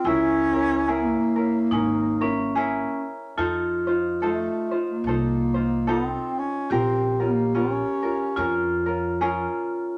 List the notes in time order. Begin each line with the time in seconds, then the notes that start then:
0.04 C#2 C#4 E4 G#4 A#4
0.53 C#4 E4 A#4
0.88 A#3 C#4 E4 G#4 A#4
1.36 C#4 E4 A#4
1.71 G#1 C#4 D#4 G#4 A#4
2.21 C#4 E4 A#4
2.55 C#4 E4 G#4 A#4
3.37 F2 D#4 F4 A4 C5
3.87 D#4 F4 C5
4.22 A3 D#4 F4 A4 C5
4.71 D#4 F4 C5
4.90 A#3
5.04 C2 D#4 A4
5.08 F4 C5
5.54 D#4 F4 C5
5.87 B3 D#4 F4 A4 C5
6.07 C4
6.39 C#4
6.70 A#1 C4 F4 G4 A#4
7.20 A#3 C#4 F4 A#4
7.55 C#4 F4 A#4
8.03 C#4 F4 A#4
8.36 F2 C#4 F4 G#4 A#4
8.86 C#4 F4 A#4
9.21 C#4 F4 G#4 A#4